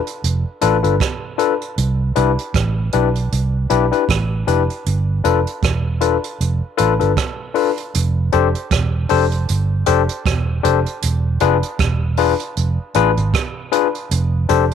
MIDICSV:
0, 0, Header, 1, 4, 480
1, 0, Start_track
1, 0, Tempo, 771208
1, 1103, Time_signature, 4, 2, 24, 8
1, 9174, End_track
2, 0, Start_track
2, 0, Title_t, "Tine electric piano"
2, 0, Program_c, 0, 4
2, 383, Note_on_c, 0, 62, 97
2, 383, Note_on_c, 0, 65, 89
2, 385, Note_on_c, 0, 69, 88
2, 386, Note_on_c, 0, 71, 99
2, 475, Note_off_c, 0, 62, 0
2, 475, Note_off_c, 0, 65, 0
2, 476, Note_off_c, 0, 69, 0
2, 476, Note_off_c, 0, 71, 0
2, 516, Note_on_c, 0, 62, 77
2, 517, Note_on_c, 0, 65, 68
2, 519, Note_on_c, 0, 69, 67
2, 522, Note_on_c, 0, 71, 74
2, 588, Note_off_c, 0, 62, 0
2, 588, Note_off_c, 0, 65, 0
2, 589, Note_off_c, 0, 69, 0
2, 591, Note_off_c, 0, 71, 0
2, 858, Note_on_c, 0, 62, 83
2, 860, Note_on_c, 0, 65, 76
2, 863, Note_on_c, 0, 71, 92
2, 864, Note_on_c, 0, 69, 82
2, 953, Note_off_c, 0, 62, 0
2, 953, Note_off_c, 0, 65, 0
2, 955, Note_off_c, 0, 69, 0
2, 955, Note_off_c, 0, 71, 0
2, 1342, Note_on_c, 0, 62, 84
2, 1343, Note_on_c, 0, 64, 81
2, 1346, Note_on_c, 0, 67, 79
2, 1347, Note_on_c, 0, 71, 94
2, 1434, Note_off_c, 0, 62, 0
2, 1435, Note_off_c, 0, 64, 0
2, 1436, Note_off_c, 0, 67, 0
2, 1437, Note_off_c, 0, 71, 0
2, 1825, Note_on_c, 0, 62, 88
2, 1827, Note_on_c, 0, 64, 77
2, 1827, Note_on_c, 0, 67, 76
2, 1827, Note_on_c, 0, 71, 92
2, 1916, Note_off_c, 0, 62, 0
2, 1917, Note_off_c, 0, 64, 0
2, 1917, Note_off_c, 0, 67, 0
2, 1917, Note_off_c, 0, 71, 0
2, 2302, Note_on_c, 0, 62, 87
2, 2302, Note_on_c, 0, 64, 88
2, 2305, Note_on_c, 0, 67, 88
2, 2306, Note_on_c, 0, 71, 91
2, 2395, Note_off_c, 0, 62, 0
2, 2395, Note_off_c, 0, 64, 0
2, 2396, Note_off_c, 0, 67, 0
2, 2397, Note_off_c, 0, 71, 0
2, 2438, Note_on_c, 0, 62, 73
2, 2438, Note_on_c, 0, 67, 65
2, 2439, Note_on_c, 0, 64, 70
2, 2442, Note_on_c, 0, 71, 84
2, 2509, Note_off_c, 0, 62, 0
2, 2509, Note_off_c, 0, 67, 0
2, 2510, Note_off_c, 0, 64, 0
2, 2511, Note_off_c, 0, 71, 0
2, 2784, Note_on_c, 0, 62, 81
2, 2785, Note_on_c, 0, 64, 71
2, 2785, Note_on_c, 0, 67, 79
2, 2787, Note_on_c, 0, 71, 93
2, 2876, Note_off_c, 0, 62, 0
2, 2876, Note_off_c, 0, 64, 0
2, 2877, Note_off_c, 0, 67, 0
2, 2878, Note_off_c, 0, 71, 0
2, 3262, Note_on_c, 0, 62, 86
2, 3265, Note_on_c, 0, 65, 85
2, 3265, Note_on_c, 0, 71, 93
2, 3267, Note_on_c, 0, 69, 81
2, 3355, Note_off_c, 0, 62, 0
2, 3356, Note_off_c, 0, 65, 0
2, 3356, Note_off_c, 0, 71, 0
2, 3357, Note_off_c, 0, 69, 0
2, 3739, Note_on_c, 0, 62, 80
2, 3740, Note_on_c, 0, 65, 82
2, 3740, Note_on_c, 0, 69, 72
2, 3742, Note_on_c, 0, 71, 86
2, 3834, Note_off_c, 0, 62, 0
2, 3834, Note_off_c, 0, 65, 0
2, 3834, Note_off_c, 0, 69, 0
2, 3835, Note_off_c, 0, 71, 0
2, 4216, Note_on_c, 0, 62, 82
2, 4217, Note_on_c, 0, 65, 91
2, 4218, Note_on_c, 0, 69, 91
2, 4218, Note_on_c, 0, 71, 106
2, 4312, Note_off_c, 0, 62, 0
2, 4313, Note_off_c, 0, 65, 0
2, 4313, Note_off_c, 0, 69, 0
2, 4313, Note_off_c, 0, 71, 0
2, 4351, Note_on_c, 0, 62, 70
2, 4354, Note_on_c, 0, 65, 61
2, 4355, Note_on_c, 0, 69, 65
2, 4356, Note_on_c, 0, 71, 74
2, 4426, Note_off_c, 0, 62, 0
2, 4428, Note_off_c, 0, 65, 0
2, 4428, Note_off_c, 0, 69, 0
2, 4429, Note_off_c, 0, 71, 0
2, 4694, Note_on_c, 0, 62, 81
2, 4697, Note_on_c, 0, 69, 73
2, 4698, Note_on_c, 0, 65, 80
2, 4700, Note_on_c, 0, 71, 84
2, 4791, Note_off_c, 0, 62, 0
2, 4792, Note_off_c, 0, 69, 0
2, 4793, Note_off_c, 0, 65, 0
2, 4794, Note_off_c, 0, 71, 0
2, 5181, Note_on_c, 0, 62, 94
2, 5183, Note_on_c, 0, 67, 90
2, 5184, Note_on_c, 0, 72, 96
2, 5186, Note_on_c, 0, 69, 88
2, 5274, Note_off_c, 0, 62, 0
2, 5276, Note_off_c, 0, 67, 0
2, 5276, Note_off_c, 0, 72, 0
2, 5277, Note_off_c, 0, 69, 0
2, 5659, Note_on_c, 0, 62, 91
2, 5663, Note_on_c, 0, 67, 77
2, 5664, Note_on_c, 0, 69, 83
2, 5665, Note_on_c, 0, 72, 106
2, 5754, Note_off_c, 0, 62, 0
2, 5755, Note_off_c, 0, 67, 0
2, 5756, Note_off_c, 0, 69, 0
2, 5757, Note_off_c, 0, 72, 0
2, 6138, Note_on_c, 0, 67, 94
2, 6139, Note_on_c, 0, 62, 94
2, 6142, Note_on_c, 0, 69, 90
2, 6143, Note_on_c, 0, 72, 105
2, 6233, Note_off_c, 0, 62, 0
2, 6233, Note_off_c, 0, 67, 0
2, 6235, Note_off_c, 0, 69, 0
2, 6235, Note_off_c, 0, 72, 0
2, 6617, Note_on_c, 0, 62, 89
2, 6618, Note_on_c, 0, 67, 83
2, 6621, Note_on_c, 0, 69, 81
2, 6624, Note_on_c, 0, 72, 96
2, 6713, Note_off_c, 0, 62, 0
2, 6713, Note_off_c, 0, 67, 0
2, 6714, Note_off_c, 0, 69, 0
2, 6716, Note_off_c, 0, 72, 0
2, 7101, Note_on_c, 0, 62, 103
2, 7102, Note_on_c, 0, 65, 90
2, 7104, Note_on_c, 0, 68, 85
2, 7105, Note_on_c, 0, 71, 102
2, 7194, Note_off_c, 0, 62, 0
2, 7195, Note_off_c, 0, 65, 0
2, 7196, Note_off_c, 0, 68, 0
2, 7196, Note_off_c, 0, 71, 0
2, 7579, Note_on_c, 0, 62, 90
2, 7582, Note_on_c, 0, 65, 89
2, 7583, Note_on_c, 0, 68, 79
2, 7583, Note_on_c, 0, 71, 95
2, 7673, Note_off_c, 0, 62, 0
2, 7675, Note_off_c, 0, 65, 0
2, 7675, Note_off_c, 0, 68, 0
2, 7675, Note_off_c, 0, 71, 0
2, 8060, Note_on_c, 0, 62, 95
2, 8064, Note_on_c, 0, 65, 87
2, 8064, Note_on_c, 0, 68, 93
2, 8065, Note_on_c, 0, 71, 118
2, 8154, Note_off_c, 0, 62, 0
2, 8155, Note_off_c, 0, 68, 0
2, 8156, Note_off_c, 0, 65, 0
2, 8156, Note_off_c, 0, 71, 0
2, 8537, Note_on_c, 0, 62, 86
2, 8540, Note_on_c, 0, 65, 87
2, 8540, Note_on_c, 0, 68, 81
2, 8540, Note_on_c, 0, 71, 98
2, 8632, Note_off_c, 0, 62, 0
2, 8633, Note_off_c, 0, 65, 0
2, 8633, Note_off_c, 0, 68, 0
2, 8633, Note_off_c, 0, 71, 0
2, 9019, Note_on_c, 0, 62, 90
2, 9020, Note_on_c, 0, 67, 84
2, 9022, Note_on_c, 0, 72, 106
2, 9023, Note_on_c, 0, 69, 81
2, 9112, Note_off_c, 0, 62, 0
2, 9113, Note_off_c, 0, 67, 0
2, 9114, Note_off_c, 0, 72, 0
2, 9115, Note_off_c, 0, 69, 0
2, 9174, End_track
3, 0, Start_track
3, 0, Title_t, "Fingered electric bass"
3, 0, Program_c, 1, 33
3, 149, Note_on_c, 1, 29, 85
3, 267, Note_off_c, 1, 29, 0
3, 390, Note_on_c, 1, 33, 77
3, 508, Note_off_c, 1, 33, 0
3, 523, Note_on_c, 1, 31, 80
3, 614, Note_off_c, 1, 31, 0
3, 1107, Note_on_c, 1, 36, 107
3, 1318, Note_off_c, 1, 36, 0
3, 1349, Note_on_c, 1, 36, 84
3, 1467, Note_off_c, 1, 36, 0
3, 1586, Note_on_c, 1, 33, 97
3, 1798, Note_off_c, 1, 33, 0
3, 1830, Note_on_c, 1, 35, 91
3, 2040, Note_off_c, 1, 35, 0
3, 2069, Note_on_c, 1, 36, 85
3, 2280, Note_off_c, 1, 36, 0
3, 2307, Note_on_c, 1, 35, 80
3, 2426, Note_off_c, 1, 35, 0
3, 2546, Note_on_c, 1, 33, 83
3, 2758, Note_off_c, 1, 33, 0
3, 2787, Note_on_c, 1, 29, 82
3, 2906, Note_off_c, 1, 29, 0
3, 3028, Note_on_c, 1, 31, 94
3, 3239, Note_off_c, 1, 31, 0
3, 3268, Note_on_c, 1, 29, 75
3, 3387, Note_off_c, 1, 29, 0
3, 3504, Note_on_c, 1, 28, 87
3, 3838, Note_off_c, 1, 28, 0
3, 3987, Note_on_c, 1, 29, 86
3, 4106, Note_off_c, 1, 29, 0
3, 4231, Note_on_c, 1, 33, 77
3, 4349, Note_off_c, 1, 33, 0
3, 4365, Note_on_c, 1, 31, 73
3, 4456, Note_off_c, 1, 31, 0
3, 4950, Note_on_c, 1, 29, 115
3, 5160, Note_off_c, 1, 29, 0
3, 5189, Note_on_c, 1, 29, 99
3, 5308, Note_off_c, 1, 29, 0
3, 5424, Note_on_c, 1, 28, 95
3, 5637, Note_off_c, 1, 28, 0
3, 5672, Note_on_c, 1, 29, 97
3, 5881, Note_off_c, 1, 29, 0
3, 5912, Note_on_c, 1, 31, 81
3, 6121, Note_off_c, 1, 31, 0
3, 6148, Note_on_c, 1, 29, 92
3, 6267, Note_off_c, 1, 29, 0
3, 6385, Note_on_c, 1, 28, 87
3, 6598, Note_off_c, 1, 28, 0
3, 6627, Note_on_c, 1, 29, 99
3, 6746, Note_off_c, 1, 29, 0
3, 6868, Note_on_c, 1, 28, 105
3, 7079, Note_off_c, 1, 28, 0
3, 7106, Note_on_c, 1, 29, 95
3, 7226, Note_off_c, 1, 29, 0
3, 7343, Note_on_c, 1, 28, 99
3, 7676, Note_off_c, 1, 28, 0
3, 7825, Note_on_c, 1, 29, 85
3, 7945, Note_off_c, 1, 29, 0
3, 8063, Note_on_c, 1, 33, 86
3, 8184, Note_off_c, 1, 33, 0
3, 8200, Note_on_c, 1, 32, 95
3, 8292, Note_off_c, 1, 32, 0
3, 8783, Note_on_c, 1, 29, 113
3, 8996, Note_off_c, 1, 29, 0
3, 9024, Note_on_c, 1, 29, 95
3, 9144, Note_off_c, 1, 29, 0
3, 9174, End_track
4, 0, Start_track
4, 0, Title_t, "Drums"
4, 42, Note_on_c, 9, 42, 50
4, 104, Note_off_c, 9, 42, 0
4, 149, Note_on_c, 9, 42, 80
4, 212, Note_off_c, 9, 42, 0
4, 381, Note_on_c, 9, 42, 75
4, 444, Note_off_c, 9, 42, 0
4, 523, Note_on_c, 9, 42, 47
4, 586, Note_off_c, 9, 42, 0
4, 624, Note_on_c, 9, 36, 100
4, 626, Note_on_c, 9, 42, 82
4, 631, Note_on_c, 9, 37, 110
4, 687, Note_off_c, 9, 36, 0
4, 688, Note_off_c, 9, 42, 0
4, 693, Note_off_c, 9, 37, 0
4, 865, Note_on_c, 9, 42, 65
4, 928, Note_off_c, 9, 42, 0
4, 1005, Note_on_c, 9, 42, 41
4, 1067, Note_off_c, 9, 42, 0
4, 1105, Note_on_c, 9, 42, 82
4, 1168, Note_off_c, 9, 42, 0
4, 1342, Note_on_c, 9, 42, 60
4, 1404, Note_off_c, 9, 42, 0
4, 1484, Note_on_c, 9, 42, 48
4, 1547, Note_off_c, 9, 42, 0
4, 1582, Note_on_c, 9, 42, 84
4, 1583, Note_on_c, 9, 36, 102
4, 1590, Note_on_c, 9, 37, 93
4, 1645, Note_off_c, 9, 36, 0
4, 1645, Note_off_c, 9, 42, 0
4, 1653, Note_off_c, 9, 37, 0
4, 1820, Note_on_c, 9, 42, 71
4, 1882, Note_off_c, 9, 42, 0
4, 1962, Note_on_c, 9, 42, 50
4, 2025, Note_off_c, 9, 42, 0
4, 2068, Note_on_c, 9, 42, 77
4, 2130, Note_off_c, 9, 42, 0
4, 2302, Note_on_c, 9, 42, 68
4, 2364, Note_off_c, 9, 42, 0
4, 2442, Note_on_c, 9, 42, 48
4, 2505, Note_off_c, 9, 42, 0
4, 2544, Note_on_c, 9, 36, 98
4, 2549, Note_on_c, 9, 42, 85
4, 2553, Note_on_c, 9, 37, 104
4, 2606, Note_off_c, 9, 36, 0
4, 2611, Note_off_c, 9, 42, 0
4, 2616, Note_off_c, 9, 37, 0
4, 2785, Note_on_c, 9, 42, 65
4, 2848, Note_off_c, 9, 42, 0
4, 2925, Note_on_c, 9, 42, 47
4, 2987, Note_off_c, 9, 42, 0
4, 3027, Note_on_c, 9, 42, 90
4, 3089, Note_off_c, 9, 42, 0
4, 3264, Note_on_c, 9, 42, 65
4, 3326, Note_off_c, 9, 42, 0
4, 3404, Note_on_c, 9, 42, 51
4, 3466, Note_off_c, 9, 42, 0
4, 3502, Note_on_c, 9, 36, 104
4, 3504, Note_on_c, 9, 42, 80
4, 3512, Note_on_c, 9, 37, 103
4, 3565, Note_off_c, 9, 36, 0
4, 3566, Note_off_c, 9, 42, 0
4, 3574, Note_off_c, 9, 37, 0
4, 3742, Note_on_c, 9, 42, 76
4, 3804, Note_off_c, 9, 42, 0
4, 3883, Note_on_c, 9, 42, 52
4, 3945, Note_off_c, 9, 42, 0
4, 3988, Note_on_c, 9, 42, 78
4, 4050, Note_off_c, 9, 42, 0
4, 4220, Note_on_c, 9, 42, 76
4, 4282, Note_off_c, 9, 42, 0
4, 4360, Note_on_c, 9, 42, 48
4, 4423, Note_off_c, 9, 42, 0
4, 4462, Note_on_c, 9, 36, 100
4, 4462, Note_on_c, 9, 42, 80
4, 4467, Note_on_c, 9, 37, 102
4, 4524, Note_off_c, 9, 42, 0
4, 4525, Note_off_c, 9, 36, 0
4, 4529, Note_off_c, 9, 37, 0
4, 4700, Note_on_c, 9, 46, 60
4, 4762, Note_off_c, 9, 46, 0
4, 4839, Note_on_c, 9, 42, 48
4, 4902, Note_off_c, 9, 42, 0
4, 4944, Note_on_c, 9, 42, 101
4, 5006, Note_off_c, 9, 42, 0
4, 5179, Note_on_c, 9, 42, 62
4, 5242, Note_off_c, 9, 42, 0
4, 5321, Note_on_c, 9, 42, 50
4, 5383, Note_off_c, 9, 42, 0
4, 5420, Note_on_c, 9, 42, 87
4, 5421, Note_on_c, 9, 36, 107
4, 5428, Note_on_c, 9, 37, 104
4, 5482, Note_off_c, 9, 42, 0
4, 5484, Note_off_c, 9, 36, 0
4, 5490, Note_off_c, 9, 37, 0
4, 5657, Note_on_c, 9, 46, 55
4, 5720, Note_off_c, 9, 46, 0
4, 5798, Note_on_c, 9, 42, 51
4, 5861, Note_off_c, 9, 42, 0
4, 5904, Note_on_c, 9, 42, 80
4, 5966, Note_off_c, 9, 42, 0
4, 6137, Note_on_c, 9, 42, 78
4, 6199, Note_off_c, 9, 42, 0
4, 6279, Note_on_c, 9, 42, 55
4, 6341, Note_off_c, 9, 42, 0
4, 6383, Note_on_c, 9, 36, 105
4, 6384, Note_on_c, 9, 42, 89
4, 6389, Note_on_c, 9, 37, 111
4, 6445, Note_off_c, 9, 36, 0
4, 6447, Note_off_c, 9, 42, 0
4, 6451, Note_off_c, 9, 37, 0
4, 6625, Note_on_c, 9, 42, 71
4, 6687, Note_off_c, 9, 42, 0
4, 6760, Note_on_c, 9, 42, 52
4, 6822, Note_off_c, 9, 42, 0
4, 6861, Note_on_c, 9, 42, 107
4, 6923, Note_off_c, 9, 42, 0
4, 7095, Note_on_c, 9, 42, 70
4, 7158, Note_off_c, 9, 42, 0
4, 7236, Note_on_c, 9, 42, 52
4, 7299, Note_off_c, 9, 42, 0
4, 7337, Note_on_c, 9, 42, 86
4, 7340, Note_on_c, 9, 36, 114
4, 7345, Note_on_c, 9, 37, 96
4, 7400, Note_off_c, 9, 42, 0
4, 7402, Note_off_c, 9, 36, 0
4, 7408, Note_off_c, 9, 37, 0
4, 7575, Note_on_c, 9, 46, 57
4, 7637, Note_off_c, 9, 46, 0
4, 7716, Note_on_c, 9, 42, 53
4, 7778, Note_off_c, 9, 42, 0
4, 7821, Note_on_c, 9, 42, 76
4, 7883, Note_off_c, 9, 42, 0
4, 8056, Note_on_c, 9, 42, 76
4, 8118, Note_off_c, 9, 42, 0
4, 8198, Note_on_c, 9, 42, 50
4, 8260, Note_off_c, 9, 42, 0
4, 8301, Note_on_c, 9, 36, 105
4, 8303, Note_on_c, 9, 42, 96
4, 8307, Note_on_c, 9, 37, 121
4, 8364, Note_off_c, 9, 36, 0
4, 8365, Note_off_c, 9, 42, 0
4, 8369, Note_off_c, 9, 37, 0
4, 8541, Note_on_c, 9, 42, 66
4, 8603, Note_off_c, 9, 42, 0
4, 8680, Note_on_c, 9, 42, 46
4, 8742, Note_off_c, 9, 42, 0
4, 8782, Note_on_c, 9, 42, 97
4, 8845, Note_off_c, 9, 42, 0
4, 9018, Note_on_c, 9, 42, 64
4, 9080, Note_off_c, 9, 42, 0
4, 9174, End_track
0, 0, End_of_file